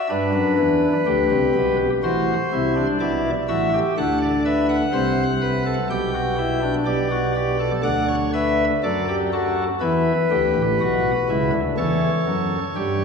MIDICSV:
0, 0, Header, 1, 2, 480
1, 0, Start_track
1, 0, Key_signature, 1, "major"
1, 0, Tempo, 967742
1, 51, Time_signature, 4, 2, 24, 8
1, 3411, Tempo, 983607
1, 6421, End_track
2, 0, Start_track
2, 0, Title_t, "Pipe organ"
2, 0, Program_c, 0, 19
2, 46, Note_on_c, 0, 62, 81
2, 48, Note_on_c, 0, 71, 78
2, 50, Note_on_c, 0, 43, 94
2, 50, Note_on_c, 0, 55, 95
2, 153, Note_off_c, 0, 43, 0
2, 153, Note_off_c, 0, 55, 0
2, 168, Note_on_c, 0, 42, 81
2, 168, Note_on_c, 0, 54, 81
2, 272, Note_off_c, 0, 42, 0
2, 272, Note_off_c, 0, 54, 0
2, 287, Note_on_c, 0, 40, 86
2, 288, Note_on_c, 0, 52, 90
2, 437, Note_off_c, 0, 40, 0
2, 437, Note_off_c, 0, 52, 0
2, 460, Note_off_c, 0, 62, 0
2, 526, Note_on_c, 0, 50, 86
2, 526, Note_on_c, 0, 67, 73
2, 527, Note_on_c, 0, 38, 90
2, 631, Note_off_c, 0, 50, 0
2, 632, Note_off_c, 0, 38, 0
2, 649, Note_on_c, 0, 48, 91
2, 651, Note_on_c, 0, 36, 90
2, 753, Note_off_c, 0, 48, 0
2, 754, Note_off_c, 0, 36, 0
2, 770, Note_on_c, 0, 35, 85
2, 770, Note_on_c, 0, 47, 78
2, 874, Note_off_c, 0, 71, 0
2, 919, Note_off_c, 0, 35, 0
2, 919, Note_off_c, 0, 47, 0
2, 941, Note_off_c, 0, 67, 0
2, 1008, Note_on_c, 0, 33, 86
2, 1009, Note_on_c, 0, 45, 88
2, 1009, Note_on_c, 0, 66, 74
2, 1010, Note_on_c, 0, 72, 73
2, 1157, Note_off_c, 0, 33, 0
2, 1158, Note_off_c, 0, 45, 0
2, 1158, Note_off_c, 0, 66, 0
2, 1252, Note_on_c, 0, 48, 92
2, 1252, Note_on_c, 0, 64, 73
2, 1255, Note_on_c, 0, 36, 83
2, 1354, Note_off_c, 0, 64, 0
2, 1368, Note_on_c, 0, 62, 81
2, 1399, Note_off_c, 0, 48, 0
2, 1401, Note_off_c, 0, 36, 0
2, 1421, Note_off_c, 0, 72, 0
2, 1471, Note_off_c, 0, 62, 0
2, 1489, Note_on_c, 0, 64, 77
2, 1489, Note_on_c, 0, 74, 70
2, 1490, Note_on_c, 0, 47, 95
2, 1492, Note_on_c, 0, 35, 86
2, 1637, Note_off_c, 0, 64, 0
2, 1637, Note_off_c, 0, 74, 0
2, 1638, Note_off_c, 0, 47, 0
2, 1639, Note_off_c, 0, 35, 0
2, 1728, Note_on_c, 0, 45, 87
2, 1728, Note_on_c, 0, 76, 76
2, 1729, Note_on_c, 0, 33, 83
2, 1729, Note_on_c, 0, 66, 71
2, 1831, Note_off_c, 0, 66, 0
2, 1852, Note_on_c, 0, 67, 80
2, 1876, Note_off_c, 0, 76, 0
2, 1877, Note_off_c, 0, 33, 0
2, 1877, Note_off_c, 0, 45, 0
2, 1953, Note_off_c, 0, 67, 0
2, 1970, Note_on_c, 0, 38, 96
2, 1971, Note_on_c, 0, 69, 79
2, 1972, Note_on_c, 0, 50, 93
2, 1972, Note_on_c, 0, 78, 78
2, 2073, Note_off_c, 0, 78, 0
2, 2092, Note_on_c, 0, 74, 79
2, 2119, Note_off_c, 0, 69, 0
2, 2194, Note_off_c, 0, 74, 0
2, 2208, Note_on_c, 0, 71, 74
2, 2208, Note_on_c, 0, 76, 77
2, 2312, Note_off_c, 0, 76, 0
2, 2326, Note_on_c, 0, 78, 84
2, 2357, Note_off_c, 0, 71, 0
2, 2383, Note_off_c, 0, 38, 0
2, 2384, Note_off_c, 0, 50, 0
2, 2444, Note_on_c, 0, 72, 81
2, 2446, Note_on_c, 0, 48, 92
2, 2447, Note_on_c, 0, 36, 98
2, 2596, Note_off_c, 0, 72, 0
2, 2684, Note_on_c, 0, 71, 83
2, 2791, Note_off_c, 0, 71, 0
2, 2806, Note_on_c, 0, 69, 73
2, 2847, Note_off_c, 0, 78, 0
2, 2863, Note_off_c, 0, 48, 0
2, 2864, Note_off_c, 0, 36, 0
2, 2912, Note_off_c, 0, 69, 0
2, 2926, Note_on_c, 0, 35, 93
2, 2926, Note_on_c, 0, 47, 85
2, 2926, Note_on_c, 0, 79, 75
2, 2927, Note_on_c, 0, 67, 76
2, 3032, Note_off_c, 0, 67, 0
2, 3047, Note_on_c, 0, 66, 83
2, 3152, Note_off_c, 0, 66, 0
2, 3164, Note_on_c, 0, 64, 79
2, 3270, Note_off_c, 0, 64, 0
2, 3284, Note_on_c, 0, 62, 83
2, 3341, Note_off_c, 0, 35, 0
2, 3341, Note_off_c, 0, 47, 0
2, 3341, Note_off_c, 0, 79, 0
2, 3390, Note_off_c, 0, 62, 0
2, 3401, Note_on_c, 0, 35, 86
2, 3401, Note_on_c, 0, 47, 92
2, 3401, Note_on_c, 0, 67, 78
2, 3403, Note_on_c, 0, 74, 79
2, 3508, Note_off_c, 0, 67, 0
2, 3526, Note_on_c, 0, 66, 76
2, 3630, Note_off_c, 0, 66, 0
2, 3643, Note_on_c, 0, 67, 70
2, 3748, Note_off_c, 0, 67, 0
2, 3761, Note_on_c, 0, 69, 83
2, 3816, Note_off_c, 0, 35, 0
2, 3816, Note_off_c, 0, 47, 0
2, 3817, Note_off_c, 0, 74, 0
2, 3867, Note_off_c, 0, 69, 0
2, 3876, Note_on_c, 0, 38, 81
2, 3876, Note_on_c, 0, 50, 89
2, 3876, Note_on_c, 0, 74, 105
2, 3878, Note_on_c, 0, 78, 87
2, 3985, Note_off_c, 0, 74, 0
2, 3997, Note_on_c, 0, 73, 92
2, 4030, Note_off_c, 0, 78, 0
2, 4106, Note_off_c, 0, 73, 0
2, 4121, Note_on_c, 0, 71, 90
2, 4121, Note_on_c, 0, 76, 69
2, 4273, Note_off_c, 0, 71, 0
2, 4273, Note_off_c, 0, 76, 0
2, 4296, Note_off_c, 0, 38, 0
2, 4296, Note_off_c, 0, 50, 0
2, 4363, Note_on_c, 0, 54, 79
2, 4364, Note_on_c, 0, 69, 91
2, 4365, Note_on_c, 0, 42, 86
2, 4366, Note_on_c, 0, 74, 77
2, 4470, Note_off_c, 0, 69, 0
2, 4487, Note_on_c, 0, 67, 92
2, 4516, Note_off_c, 0, 74, 0
2, 4591, Note_off_c, 0, 67, 0
2, 4607, Note_on_c, 0, 69, 72
2, 4608, Note_on_c, 0, 66, 90
2, 4756, Note_off_c, 0, 66, 0
2, 4756, Note_off_c, 0, 69, 0
2, 4777, Note_off_c, 0, 54, 0
2, 4778, Note_off_c, 0, 42, 0
2, 4840, Note_on_c, 0, 71, 78
2, 4841, Note_on_c, 0, 40, 74
2, 4841, Note_on_c, 0, 52, 74
2, 4843, Note_on_c, 0, 64, 90
2, 4991, Note_off_c, 0, 40, 0
2, 4991, Note_off_c, 0, 52, 0
2, 4993, Note_off_c, 0, 64, 0
2, 5085, Note_on_c, 0, 38, 73
2, 5085, Note_on_c, 0, 67, 93
2, 5087, Note_on_c, 0, 50, 84
2, 5189, Note_off_c, 0, 38, 0
2, 5190, Note_off_c, 0, 50, 0
2, 5206, Note_on_c, 0, 33, 86
2, 5206, Note_on_c, 0, 45, 72
2, 5235, Note_off_c, 0, 67, 0
2, 5309, Note_off_c, 0, 45, 0
2, 5310, Note_off_c, 0, 33, 0
2, 5328, Note_on_c, 0, 35, 73
2, 5328, Note_on_c, 0, 47, 79
2, 5330, Note_on_c, 0, 66, 98
2, 5476, Note_off_c, 0, 35, 0
2, 5477, Note_off_c, 0, 47, 0
2, 5478, Note_off_c, 0, 66, 0
2, 5565, Note_on_c, 0, 49, 74
2, 5565, Note_on_c, 0, 64, 87
2, 5567, Note_on_c, 0, 37, 69
2, 5668, Note_off_c, 0, 71, 0
2, 5669, Note_off_c, 0, 49, 0
2, 5670, Note_off_c, 0, 37, 0
2, 5683, Note_on_c, 0, 38, 76
2, 5683, Note_on_c, 0, 50, 74
2, 5715, Note_off_c, 0, 64, 0
2, 5788, Note_off_c, 0, 38, 0
2, 5788, Note_off_c, 0, 50, 0
2, 5799, Note_on_c, 0, 40, 79
2, 5801, Note_on_c, 0, 69, 91
2, 5801, Note_on_c, 0, 73, 80
2, 5802, Note_on_c, 0, 52, 80
2, 5951, Note_off_c, 0, 40, 0
2, 5952, Note_off_c, 0, 52, 0
2, 6039, Note_on_c, 0, 54, 68
2, 6040, Note_on_c, 0, 42, 72
2, 6191, Note_off_c, 0, 54, 0
2, 6192, Note_off_c, 0, 42, 0
2, 6217, Note_off_c, 0, 69, 0
2, 6280, Note_on_c, 0, 43, 75
2, 6280, Note_on_c, 0, 55, 78
2, 6281, Note_on_c, 0, 67, 85
2, 6421, Note_off_c, 0, 43, 0
2, 6421, Note_off_c, 0, 55, 0
2, 6421, Note_off_c, 0, 67, 0
2, 6421, Note_off_c, 0, 73, 0
2, 6421, End_track
0, 0, End_of_file